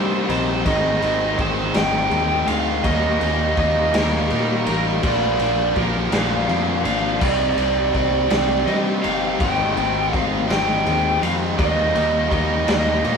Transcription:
Already playing: G2 C3 G3 C4 D#4 C5
0.28 A#1 G3 C4 D#4 C5, ride
0.64 G#1 G#2 D#3 G#3 C4 D#4 D#5, kick, ride
1.02 G#1 G#2 D#3 G#3 C4 D#4, ride
1.38 G#1 G#2 D#3 G#3 C4 D#4 C5, kick, ride
1.74 G#1 G#2 D#3 G#3 C4 D#4 G5, snare, ride
2.10 D#2 G#2 D#3 G#3 C4 D#4, ride
2.46 D2 G#3 C4 D#4 F5, ride
2.83 D#2 D#3 G3 A#3 D#4 D#5, kick, ride
3.20 D#2 D#3 G3 A#3 D#4, ride
3.57 D#2 D#3 G3 A#3 D#5, kick, ride
3.61 D#4
3.92 D#2 D#3 G3 A#3 D#4 A#4, snare, ride
4.29 A#2 D#3 G3 A#3 D#4, ride
4.65 A1 G3 A#3 D#4 A#4, ride
5.02 A#1 A#2 D3 F3 A#3 D4 D5, kick, ride
5.38 A#1 A#2 F3 A#3 D4, ride
5.76 A#1 A#2 D3 F3 A#3 D4 A#4, kick, ride
6.11 A#1 A#2 D3 F3 A#3 D4 F5, snare, ride
6.47 F2 A#2 D3 F3 A#3 D4, ride
6.83 G#1 F3 A#3 D4 F5, ride
7.20 C2 C3 G3 C4 D#4 D5, kick, crash
7.56 C2 C3 G3 C4 D#4, ride
7.93 C2 C3 G3 C4 D#4 D5, kick, ride
8.28 C2 C3 G3 C4 D#4, snare, ride
8.66 G2 C3 G3 C4 D#4 D#5, ride
9.02 G1 G3 C4 D#4 F5, ride
9.39 G#1 G#2 D#3 G#3 C4 D#4 G5, kick, ride
9.76 G#1 G#2 D#3 G#3 C4 D#4, ride
10.11 G#1 G#2 D#3 G#3 C4 D#4 F5, kick, ride
10.48 G#1 G#2 D#3 G#3 C4 D#4 G5, snare, ride
10.84 D#2 G#2 D#3 G#3 C4 D#4, ride
11.21 F2 G#3 C4 D#4 F5, ride
11.57 D#2 D#3 G3 A#3 D#4 D#5, kick, ride
11.93 D#2 D#3 G3 A#3 D#4, ride
12.30 D#2 D#3 G3 A#3 D#4 D#5, kick, ride
12.66 D#2 D#3 G3 A#3 D#4 D#5, snare, ride
13.02 A#2 D#3 G3 A#3 D#4, ride

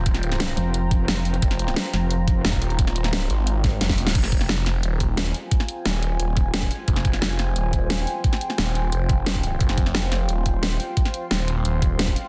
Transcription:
Already playing: D#1 F4 C5 G5 A#5
0.06 kick, closed hi-hat
0.14 snare, closed hi-hat
0.23 closed hi-hat
0.32 snare, closed hi-hat
0.40 snare, closed hi-hat
0.57 F1, closed hi-hat
0.74 closed hi-hat
0.91 kick, closed hi-hat
1.08 F1, snare, closed hi-hat
1.17 closed hi-hat
1.25 open hi-hat
1.34 closed hi-hat
1.42 F1, kick, closed hi-hat
1.51 snare, closed hi-hat
1.59 closed hi-hat
1.68 snare, closed hi-hat
1.76 snare, closed hi-hat
1.93 F1, snare, closed hi-hat
2.11 closed hi-hat
2.28 kick, closed hi-hat
2.45 D#1, snare, closed hi-hat
2.53 kick, closed hi-hat
2.62 open hi-hat
2.70 closed hi-hat
2.79 kick, closed hi-hat
2.87 snare, closed hi-hat
2.96 closed hi-hat
3.04 D1, snare, closed hi-hat
3.13 snare, closed hi-hat
3.30 G#1, closed hi-hat
3.47 closed hi-hat
3.64 kick, snare, closed hi-hat
3.81 F1, snare, closed hi-hat
3.90 kick, snare, closed hi-hat
3.98 open hi-hat
4.07 snare, closed hi-hat
4.15 F1 F4 C5 G5 G#5, kick, closed hi-hat, crash
4.24 snare
4.32 kick, closed hi-hat
4.41 snare
4.49 F1, snare, closed hi-hat
4.66 snare, closed hi-hat
4.83 D#1, closed hi-hat
5.00 kick, closed hi-hat
5.17 snare, closed hi-hat
5.26 closed hi-hat
5.34 open hi-hat
5.51 kick, closed hi-hat
5.60 snare
5.68 closed hi-hat
5.86 D#1, snare, closed hi-hat
6.03 closed hi-hat
6.20 D#1, closed hi-hat
6.37 kick, closed hi-hat
6.54 snare, closed hi-hat
6.62 kick, closed hi-hat
6.71 open hi-hat
6.88 F1, kick, closed hi-hat
6.96 snare
7.05 kick, closed hi-hat
7.13 snare
7.22 F1, snare, closed hi-hat
7.39 snare, closed hi-hat
7.56 D#1, closed hi-hat
7.73 kick, closed hi-hat
7.90 snare, closed hi-hat
7.99 closed hi-hat
8.07 open hi-hat
8.24 kick, closed hi-hat
8.33 snare
8.41 closed hi-hat
8.50 snare
8.58 D#1, snare, closed hi-hat
8.75 closed hi-hat
8.92 F1, closed hi-hat
9.09 kick, closed hi-hat
9.26 snare, closed hi-hat
9.35 kick, closed hi-hat
9.43 open hi-hat
9.61 F1 C6, kick, closed hi-hat
9.69 snare
9.78 kick, closed hi-hat
9.86 snare
9.95 F1, snare, closed hi-hat
10.12 snare, closed hi-hat
10.29 D#1, closed hi-hat
10.46 kick, closed hi-hat
10.63 snare, closed hi-hat
10.71 closed hi-hat
10.80 open hi-hat
10.97 kick, closed hi-hat
11.05 snare
11.14 closed hi-hat
11.31 D#1, snare, closed hi-hat
11.48 closed hi-hat
11.65 D#1, closed hi-hat
11.82 kick, closed hi-hat
11.99 snare, closed hi-hat
12.08 kick, closed hi-hat
12.16 open hi-hat

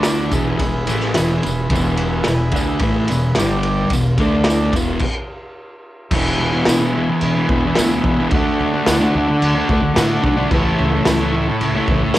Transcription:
Already playing: D2 D3 A3 D4 A4 D5
0.03 snare, ride, tambourine
0.31 E1 E2 B2 E3 E4 G#4, kick, ride, tambourine
0.35 B4
0.59 E1 E2 B2, kick, ride, tambourine
0.87 A1 A2 E3 A3, ride, tambourine
1.00 snare
1.14 E1 E2 B2 E3, snare, ride, tambourine
1.43 E1 E2 B2, ride, tambourine
1.70 E1 E2 B2 E3, kick, ride
1.75 tambourine
1.97 ride
2.24 E1 E2 B2, snare, ride, tambourine
2.52 D2 D3 A3 D4, kick, ride
2.56 tambourine
2.79 A1 A2 E3 A3, kick, ride, tambourine
3.08 E1 E2 B2, ride, tambourine
3.35 G1 G2 D3 G3 D4 G4 D5, snare, ride
3.39 tambourine
3.63 ride
3.90 E1 E2 B2, kick, ride, tambourine
4.18 D2 D3 A3 D4 A4 D5, kick, ride, tambourine
4.44 snare, ride
4.50 tambourine
4.73 E1 E2 B2 E3, kick, ride, tambourine
4.99 kick, crash
6.11 E1 E2 B2 E4 G#4, kick, crash
6.15 E3 B4
6.38 E1
6.52 B2 E3
6.65 E1, snare, tambourine, crash
6.80 E2 B2 E3
6.94 E2 B2 E3
7.10 muted distorted electric guitar stroke
7.21 E1, crash
7.35 B2 E3
7.49 E1 E2 B2 E3, kick
7.65 muted distorted electric guitar stroke
7.75 D2 E2 B2, snare, tambourine, crash
7.80 E3
8.03 E1 E2 B2, kick
8.08 E3
8.19 B2 E3
8.31 D2 D3 A3 F#4 A4, kick, crash
8.35 D4 D5
8.60 D2
8.73 A3 D4
8.87 D2, snare, tambourine, crash
9.00 D3 A3 D4
9.15 D2 D3 A3 D4
9.29 muted distorted electric guitar stroke
9.42 D2, crash
9.55 A3 D4
9.68 D2 D3 A3 D4, kick
9.83 muted distorted electric guitar stroke
9.95 A2 D3 A3 D4, snare, tambourine, crash
10.23 B1 D3 A3 D4, kick
10.38 A3 D4
10.51 C#2 A2 E3 A3 E4 A4, kick, crash
10.56 C#5
10.78 C#2
10.92 E3 A3
11.05 C#2, snare, tambourine, crash
11.20 A2 E3 A3
11.33 A2 E3 A3
11.49 muted distorted electric guitar stroke
11.61 C#2, crash
11.75 E3 A3
11.88 C#2 A2 E3, kick
11.93 A3
12.03 muted distorted electric guitar stroke
12.14 B2, snare, crash

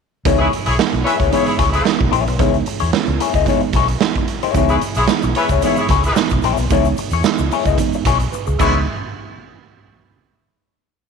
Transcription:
0.25 C#2 E3 G#3 B3 D#4 E4 G#4 C#5, kick, closed hi-hat
0.39 E4 G#4 B4
0.53 closed hi-hat
0.65 B1 E4 G#4 C#5, muted clean electric guitar stroke, closed hi-hat
0.79 E3 G#3 B3 D#4, muted clean electric guitar stroke, snare
0.93 B1, muted clean electric guitar stroke, closed hi-hat
1.04 B3 E4 G#4 B4 C#5 E5, closed hi-hat
1.19 C#2 B3 E4 G#4 C#5, kick, closed hi-hat
1.32 E3 G#3 B3 D#4 E4 G#4 C#5, closed hi-hat
1.46 E4 G#4 C#5, muted clean electric guitar stroke, closed hi-hat
1.58 C#2 B3 E4 G#4 C#5, kick, snare, closed hi-hat
1.72 E4 G#4 B4, muted clean electric guitar stroke, closed hi-hat
1.85 E3 G#3 B3 D#4, snare
1.99 B1, muted clean electric guitar stroke, kick
2.11 A#1 B3 E4 G#4 C#5, closed hi-hat
2.26 B1, muted clean electric guitar stroke, closed hi-hat
2.39 C#2 E3 G#3 B3 D#4 E4 G#4 C#5, kick, closed hi-hat
2.54 closed hi-hat
2.66 muted clean electric guitar stroke, closed hi-hat
2.79 E2 B3 E4 G#4 C#5, closed hi-hat
2.92 E3 G#3 B3 C#4, muted clean electric guitar stroke, snare
3.06 C#2, muted clean electric guitar stroke, closed hi-hat
3.20 B3 E4 G#4 C#5, closed hi-hat
3.34 C#2 B3 E4 G#4 D#5, kick, closed hi-hat
3.46 E3 G#3 B3 D#4 E4 G#4 C#5, kick, closed hi-hat
3.60 muted clean electric guitar stroke, closed hi-hat
3.73 B1 B3 E4 G#4 C#5, kick, snare, closed hi-hat
3.88 muted clean electric guitar stroke, closed hi-hat
4.00 E3 G#3 B3 D#4, muted clean electric guitar stroke, snare
4.15 muted clean electric guitar stroke, kick, closed hi-hat
4.28 closed hi-hat
4.43 B3 E4 G#4 C#5, closed hi-hat
4.54 C#2 E3 G#3 B3 D#4 E4 G#4 C#5, kick, closed hi-hat, shaker
4.68 E4 G#4 B4, closed hi-hat, shaker
4.81 closed hi-hat, shaker
4.95 B1 E4 G#4 C#5, muted clean electric guitar stroke, closed hi-hat, shaker
5.08 E3 G#3 B3 D#4, muted clean electric guitar stroke, snare, shaker
5.22 B1, muted clean electric guitar stroke, closed hi-hat, shaker
5.35 B3 E4 G#4 B4 C#5 E5, closed hi-hat
5.49 C#2 B3 E4 G#4 C#5, kick, closed hi-hat, shaker
5.62 E3 G#3 B3 D#4 E4 G#4 C#5, closed hi-hat, shaker
5.76 E4 G#4 C#5, muted clean electric guitar stroke, closed hi-hat, shaker
5.88 C#2 B3 E4 G#4 C#5, kick, snare, closed hi-hat, shaker
6.04 E4 G#4 B4, closed hi-hat, shaker
6.16 E3 G#3 B3 D#4, snare, shaker
6.30 B1, muted clean electric guitar stroke, kick, closed hi-hat, shaker
6.42 A#1 B3 E4 G#4 C#5, closed hi-hat, shaker
6.57 B1, muted clean electric guitar stroke, closed hi-hat, shaker
6.70 C#2 E3 G#3 B3 D#4 E4 G#4 C#5, kick, closed hi-hat, shaker
6.84 closed hi-hat, shaker
6.97 muted clean electric guitar stroke, closed hi-hat, shaker
7.11 E2 B3 E4 G#4 C#5, closed hi-hat, shaker
7.24 E3 G#3 B3 D#4, snare, shaker
7.38 C#2, muted clean electric guitar stroke, closed hi-hat, shaker
7.51 B3 E4 G#4 C#5, open hi-hat, shaker
7.65 C#2 B3 E4 G#4 D#5, kick, closed hi-hat, shaker
7.78 E3 G#3 B3 D#4, muted clean electric guitar stroke, kick, closed hi-hat, shaker
7.92 muted clean electric guitar stroke, closed hi-hat, shaker
8.05 B1 B3 E4 G#4 C#5, kick, snare, closed hi-hat, shaker
8.20 muted clean electric guitar stroke, closed hi-hat, shaker
8.32 B4, muted clean electric guitar stroke, shaker
8.47 C#2 G#4, muted clean electric guitar stroke, shaker
8.59 C#2 E3 G#3 B3 D#4 E4 G#4 B4 C#5, kick, crash, shaker

